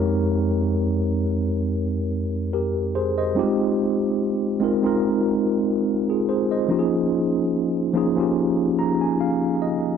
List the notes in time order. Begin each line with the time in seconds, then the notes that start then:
Already playing: F2 G#3 C4 D#4 G4 A#4 C#5
2.53 G4 A#4
2.95 G#4 C5
3.18 C5 D#5
3.35 G3 C4 D#4 F4
3.39 G#3 G4
4.60 G#3 C4 D#4 F4
4.64 A#4
4.82 G#3 C4 D#4 F4 A#4
6.10 F4 G#4
6.29 G#4 C5
6.51 C5 D#5
6.68 F3 A#3 C#4 D#4 F4 G4
6.79 G#4
7.93 F3 A#3 C#4 D#4 F4
7.97 G#4
8.16 F3 A#3 C#4 D#4 F4
8.20 G4
8.79 A#5
9.01 G#5
9.21 F5
9.62 D#5